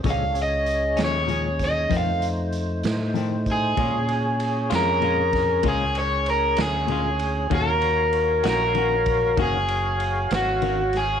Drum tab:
RD |------------|xxxxxxxxxxxx|xxxxxxxxxxxx|
HH |xxxxxxxxxxxx|------------|------------|
SD |---o-o---o--|---o-o---o--|---o-----o-o|
BD |o----oo----o|o----oo-----|o----oo-----|